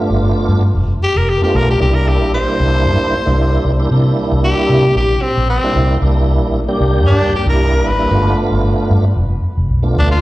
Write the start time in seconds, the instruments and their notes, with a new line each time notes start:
Already playing: tonewheel organ A3 B3 D4 F4
0.10 fingered electric bass G1
0.48 fingered electric bass G2
0.75 fingered electric bass F1
1.03 tenor saxophone G4
1.16 fingered electric bass F1, tenor saxophone A#4
1.30 tenor saxophone G4
1.41 tonewheel organ A3 B3 D4 F4, tenor saxophone G4
1.55 fingered electric bass B1, tenor saxophone A#4
1.71 tenor saxophone G4
1.80 fingered electric bass C2, tonewheel organ G3 A#3 D4 E4, tenor saxophone G4
1.95 tenor saxophone A#4
2.09 tenor saxophone G4
2.21 fingered electric bass A#1
2.34 tenor saxophone C5
2.47 tonewheel organ G3 A#3 D4 E4
2.60 fingered electric bass C2
2.86 fingered electric bass G2
3.12 muted fingered electric bass stroke
3.26 fingered electric bass C2, tonewheel organ G3 A#3 D4 E4
3.65 fingered electric bass C2
3.80 tonewheel organ G3 A#3 D4 E4
3.91 fingered electric bass C3, tonewheel organ G3 A#3 D4 E4
4.32 fingered electric bass C2
4.44 tenor saxophone G4
4.69 fingered electric bass C3
4.96 fingered electric bass A#1, tenor saxophone G4
5.22 tenor saxophone C4
5.37 fingered electric bass A#1
5.50 tenor saxophone C4
5.64 tonewheel organ G3 A#3 D4 E4
5.75 fingered electric bass C2
6.02 fingered electric bass C2, tonewheel organ G3 A#3 D4 E4
6.42 fingered electric bass A#1
6.68 tonewheel organ G3 A#3 D4 G4
6.80 fingered electric bass C2
7.06 fingered electric bass G2, tenor saxophone D4
7.32 tenor saxophone G4, muted fingered electric bass stroke
7.46 fingered electric bass C2, tonewheel organ G3 A#3 D4 E4, tenor saxophone A#4
7.85 fingered electric bass G#1, tenor saxophone B4
7.99 tonewheel organ G3 A#3 D4 E4
8.11 fingered electric bass G1, tonewheel organ A3 B3 D4 F4
8.51 fingered electric bass G1
8.90 fingered electric bass G2
9.16 fingered electric bass F1
9.57 fingered electric bass F1
9.69 fingered electric bass B1
9.83 tonewheel organ A3 B3 D4 F4
9.96 fingered electric bass D2, tenor saxophone D4
10.11 tenor saxophone F4